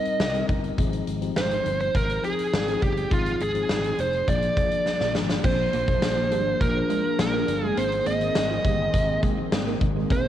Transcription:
Already playing: tine electric piano G3 C4 D#4 A#4, lead electric guitar D#5
0.05 closed hi-hat
0.20 fretless electric bass C2, snare
0.34 tine electric piano G3 C4 D#4 A#4, closed hi-hat
0.49 fretless electric bass G1, kick, closed hi-hat
0.64 closed hi-hat
0.77 fretless electric bass G#1, tine electric piano F3 C4 D#4 G#4, kick, closed hi-hat
0.93 closed hi-hat
1.07 fretless electric bass G#1, closed hi-hat
1.21 tine electric piano F3 C4 D#4 G4, closed hi-hat
1.36 fretless electric bass G#1, lead electric guitar C5, snare
1.51 closed hi-hat
1.66 fretless electric bass G1, closed hi-hat
1.80 lead electric guitar C5, closed hi-hat
1.95 fretless electric bass G#1, lead electric guitar A#4, kick, closed hi-hat
2.10 closed hi-hat
2.23 tine electric piano F3 C4 D#4 G#4, lead electric guitar G#4, closed hi-hat
2.39 closed hi-hat
2.53 fretless electric bass G#1, snare
2.67 tine electric piano F3 C4 D#4 G#4, closed hi-hat
2.82 fretless electric bass G1, lead electric guitar G4, kick, closed hi-hat
2.97 closed hi-hat
3.10 fretless electric bass G#1, tine electric piano F3 C4 D#4 G#4, lead electric guitar F4, kick, closed hi-hat
3.26 closed hi-hat
3.40 fretless electric bass G#1, lead electric guitar G#4, closed hi-hat
3.54 tine electric piano F3 C4 D#4 G#4, closed hi-hat
3.69 fretless electric bass G#1, snare
3.84 closed hi-hat
3.98 fretless electric bass F1, lead electric guitar C5, closed hi-hat
4.13 closed hi-hat
4.27 fretless electric bass A#1, tine electric piano F3 A#3 D4 G#4, lead electric guitar D5, kick, closed hi-hat
4.42 closed hi-hat
4.56 tine electric piano F3 A#3 D4 G#4, kick, closed hi-hat
4.71 closed hi-hat
4.86 snare
5.00 fretless electric bass A#1, tine electric piano F3 A#3 D4 G#4, snare
5.15 fretless electric bass G#1, snare
5.30 snare
5.44 fretless electric bass A#1, tine electric piano F3 A#3 D4 G#4, analog synth pad F3 A#3 D4 G#4, clean electric guitar C4, lead electric guitar C5, kick, crash
5.73 fretless electric bass A#1, clean electric guitar A#3, closed hi-hat
5.87 tine electric piano F3 A#3 D4 G#4, muted clean electric guitar stroke, kick, closed hi-hat
6.02 fretless electric bass A#1, muted clean electric guitar stroke, snare, closed hi-hat
6.17 clean electric guitar F3
6.31 fretless electric bass G#1, tine electric piano F3 A#3 D4 G#4, clean electric guitar G3, closed hi-hat
6.61 fretless electric bass A#1, lead electric guitar A#4, muted clean electric guitar stroke, kick, closed hi-hat
6.89 tine electric piano F3 A#3 D4 G#4, clean electric guitar G#3, closed hi-hat
7.04 clean electric guitar F3
7.18 fretless electric bass A#1, tine electric piano F3 A#3 D4 G#4, lead electric guitar A#4, snare, closed hi-hat
7.33 clean electric guitar A#3
7.48 fretless electric bass G1, muted clean electric guitar stroke, closed hi-hat
7.63 clean electric guitar G#3, lead electric guitar G#4
7.77 fretless electric bass G#1, tine electric piano D#3 A#3 C4 G#4, analog synth pad D#3 C4, clean electric guitar C4, lead electric guitar C5, closed hi-hat
7.92 closed hi-hat
8.06 fretless electric bass G#1, clean electric guitar A#3, lead electric guitar D#5, closed hi-hat
8.20 tine electric piano D#3 A#3 C4 G#4, muted clean electric guitar stroke, closed hi-hat
8.35 fretless electric bass G#1, muted clean electric guitar stroke, snare, closed hi-hat
8.50 clean electric guitar F3
8.64 fretless electric bass G1, tine electric piano D#3 A#3 C4 G#4, clean electric guitar G3, kick, closed hi-hat
8.94 fretless electric bass G#1, muted clean electric guitar stroke, kick, closed hi-hat
9.22 tine electric piano D#3 A#3 C4 G#4, clean electric guitar G#3, kick, closed hi-hat
9.38 clean electric guitar F3
9.51 fretless electric bass G#1, tine electric piano D#3 A#3 C4 G#4, snare, closed hi-hat
9.67 clean electric guitar A#3
9.81 fretless electric bass G#1, muted clean electric guitar stroke, kick, closed hi-hat
9.96 clean electric guitar G#3
10.10 fretless electric bass A#1, tine electric piano F3 A#3 D4 G#4, analog synth pad F3 D4, clean electric guitar C4, lead electric guitar C5, kick, closed hi-hat

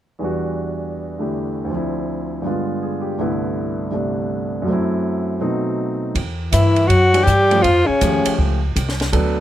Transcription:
0.19 grand piano E2 E3 G3
0.23 grand piano D4 F#4
1.18 grand piano D3 A3 E4 G4
1.65 grand piano D2 D3
1.70 grand piano F3 C4
1.76 grand piano E4
2.42 grand piano G2 D3 G#3 B3
2.46 grand piano F4
2.82 grand piano G#4
3.01 grand piano G4
3.19 grand piano C2 G2 D3 A3 B3 E4
3.91 grand piano G2 C3 G3 A3 D4
4.62 grand piano F#2 F#3
4.67 grand piano A3 C4
4.73 grand piano E4
5.41 grand piano B2 F#3 A3 C4 D#4
6.15 upright bass E2, kick, ride
6.52 upright bass G2, tenor saxophone E3, alto saxophone E4, kick, hi-hat pedal, ride
6.76 ride
6.88 upright bass F#2, tenor saxophone F#3, alto saxophone F#4, kick, ride
7.13 grand piano E3 G3 D4 F#4, ride
7.24 upright bass G2, tenor saxophone G3, alto saxophone G4, kick, hi-hat pedal
7.51 grand piano F3 A3 C#4 F4, ride
7.62 upright bass F2, tenor saxophone F3, alto saxophone F4, kick, ride
7.86 tenor saxophone C#3, alto saxophone C#4, muted upright bass stroke
8.01 upright bass D#2, grand piano F3 A3 C#4 G4, kick, hi-hat pedal, ride
8.25 muted upright bass stroke, ride
8.39 upright bass C#2, kick
8.76 upright bass C2, kick, hi-hat pedal, ride
8.89 snare
9.00 snare, ride
9.12 upright bass D2, grand piano F#3 B3 D4 A4, kick, ride

